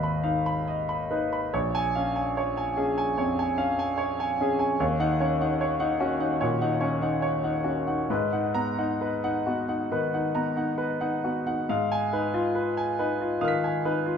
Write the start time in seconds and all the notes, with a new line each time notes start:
Already playing: G#1 D#2 D#4 B4 D#5 F5 B5
0.03 B5
0.23 D#4 F5
0.46 B5
0.68 D#5
0.89 B5
1.11 D#4 B4
1.33 B5
1.54 A#1 C#5
1.75 G#5
1.95 C#4 F5
2.16 G#5
2.37 C#5
2.57 G#5
2.77 C#4 G#4
2.98 G#5
3.18 F2 C#5
3.39 G#5
3.58 C#4 F5
3.79 G#5
3.98 C#5
4.20 G#5
4.40 C#4 G#4
4.59 G#5
4.80 D#2 C#5
4.99 D#4 F#5
5.20 C#4 C#5
5.41 D#4 F#5
5.61 C#5
5.80 D#4 F#5
6.00 C#4 F#4
6.20 D#4 F#5
6.41 A#2 C#5
6.61 D#4 F#5
6.81 C#4 C#5
7.02 D#4 F#5
7.22 C#5
7.44 D#4 F#5
7.64 C#4 F#4
7.87 D#4 F#5
8.10 G#2 B4
8.32 D#4 F#5
8.54 B3 A#5
8.78 D#4 F#5
9.01 B4
9.24 D#4 F#5
9.46 B3 F#4
9.68 D#4 F#5
9.91 D#3 B4
10.14 D#4 F#5
10.35 B3 A#5
10.57 D#4 F#5
10.78 B4
11.01 D#4 F#5
11.24 B3 F#4
11.46 D#4 F#5
11.69 G#2 F5
11.92 G#5
12.13 D#4 B4
12.34 F4
12.55 B4
12.77 G#5
12.99 D#4 B4
13.21 F4
13.41 D#3 F5 D#6 F6
13.48 B6
13.64 G#5
13.85 D#4 B4
14.06 F4